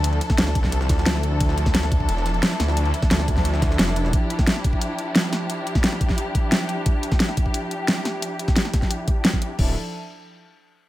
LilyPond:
<<
  \new Staff \with { instrumentName = "String section" } { \time 4/4 \key d \minor \tempo 4 = 176 << { a'1~ | a'1~ | a'1 | g'1~ |
g'1~ | g'1~ | g'1 | <f d' e' a'>8 r2. r8 | } \\ { <f d' e'>1~ | <f d' e'>1~ | <f d' e'>1~ | <f d' e'>1~ |
<f d' e'>1~ | <f d' e'>1~ | <f d' e'>1 | r1 | } >> }
  \new Staff \with { instrumentName = "Detuned saw bass" } { \clef bass \time 4/4 \key d \minor d,8 r8 d,8 c,4 d,4. | d,8 d,4. e,,4 r8 d,8~ | d,8 r8 d,8 d,8 d,4 f,,4 | r1 |
r1 | r1 | r1 | d,,8 r2. r8 | }
  \new DrumStaff \with { instrumentName = "Drums" } \drummode { \time 4/4 <hh cymr>16 cymr16 <hh cymr>16 <bd sn>16 <hh cymr sn>16 sn16 <hh bd cymr>16 <bd sn>16 <hh cymr>16 sn16 <hh bd cymr sn>16 sn16 <hh cymr sn>16 sn16 hh8 | <hh bd cymr>16 sn16 <hh cymr>16 <bd sn>16 <hh cymr sn>16 sn16 <hh bd cymr>16 bd16 <hh cymr>16 sn16 <hh cymr sn>16 cymr16 <hh cymr sn>16 sn16 <hh cymr sn>16 sn16 | <hh cymr>16 cymr16 <hh cymr>16 <bd sn>16 <hh cymr sn>16 sn16 <hh bd cymr>16 <bd sn>16 <hh cymr>16 sn16 <hh bd cymr sn>16 sn16 <hh cymr sn>16 sn16 <hh cymr>16 sn16 | <hh bd>8 hh16 <bd sn>16 <hh sn>16 sn16 <hh bd>16 bd16 hh8 hh8 <hh sn>8 <hh sn>8 |
hh8 hh16 <bd sn>16 <hh sn>16 sn16 <hh bd>16 <bd sn>16 hh8 <hh bd>8 <hh sn>8 hh8 | <hh bd>8 hh16 <bd sn>16 <hh sn>16 sn16 <hh bd>16 bd16 hh8 hh8 <hh sn>8 <hh sn>8 | hh8 hh16 <bd sn>16 <hh sn>16 sn16 <hh bd sn>16 <bd sn>16 hh8 <hh bd>8 <hh sn>16 bd16 hh8 | <cymc bd>4 r4 r4 r4 | }
>>